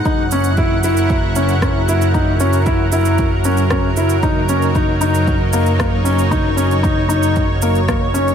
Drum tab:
SH |x-xxx-xxx-xxx-xx|x-xxx-xxx-xxx-xx|x-xxx-xxx-xxx-xx|x-xxx-xxx-xxx-xx|
SD |------------r---|------------r---|------------r---|------------r---|
BD |o---o---o---o---|o---o---o---o---|o---o---o---o---|o---o---o---o---|